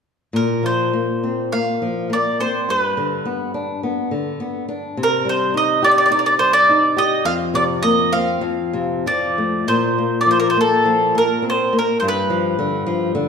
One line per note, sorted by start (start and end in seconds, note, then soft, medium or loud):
0.33 2.65 A#2 soft
0.33 0.65 A#4 medium
0.63 0.92 F3 soft
0.63 1.56 C5 medium
0.93 1.22 A#3 soft
1.23 1.51 C4 soft
1.52 1.81 A#3 soft
1.52 2.07 F5 medium
1.82 2.10 F3 soft
2.10 2.39 A#3 soft
2.10 2.39 D5 medium
2.40 2.68 C4 soft
2.40 2.70 C5 medium
2.69 4.93 G2 soft
2.69 3.80 B4 medium
2.97 3.25 D3 soft
3.25 3.53 B3 soft
3.54 3.82 D4 soft
3.83 4.11 B3 soft
4.11 4.39 D3 soft
4.40 4.68 B3 soft
4.69 4.96 D4 soft
4.97 7.21 C3 soft
5.03 5.29 A#4 medium
5.25 5.53 G3 soft
5.29 5.57 C5 medium
5.54 5.81 D#4 soft
5.54 5.84 D#5 medium
5.82 6.10 G4 soft
5.82 5.90 D5 medium
5.91 5.97 D5 soft
5.98 6.04 D5 medium
6.06 6.10 D5 medium
6.11 6.38 D#4 soft
6.11 6.18 D5 medium
6.19 6.25 D5 soft
6.26 6.33 D5 medium
6.39 6.66 G3 soft
6.39 6.52 C5 medium
6.53 6.93 D5 medium
6.69 6.96 D#4 soft
6.97 7.24 G4 soft
6.97 7.24 D#5 medium
7.25 8.39 F2 soft
7.25 7.33 F5 medium
7.54 7.82 C3 soft
7.54 7.63 D5 medium
7.83 8.12 A#3 soft
7.83 8.13 D#5 medium
8.13 8.42 C4 soft
8.13 9.33 F5 medium
8.41 9.63 F2 medium
8.73 9.04 C3 soft
9.06 9.37 F3 soft
9.06 9.65 D5 medium
9.38 9.67 A3 soft
9.68 11.99 A#2 soft
9.68 10.21 C5 medium
9.98 10.27 A#3 soft
10.21 10.30 D5 medium
10.26 10.55 F3 soft
10.31 10.39 C5 medium
10.40 10.48 A#4 medium
10.50 10.58 C5 medium
10.57 10.85 A#3 soft
10.57 11.18 A4 medium
10.85 11.14 F3 soft
11.15 11.43 A#3 soft
11.15 11.44 A#4 medium
11.42 11.72 C4 soft
11.50 11.77 C5 medium
11.73 12.02 A#3 soft
11.79 11.99 A#4 medium
12.00 13.28 G2 medium
12.00 12.05 C5 soft
12.08 13.28 B4 medium
12.30 12.58 F3 soft
12.59 12.86 D3 soft
12.86 13.14 F3 soft
13.15 13.28 D3 soft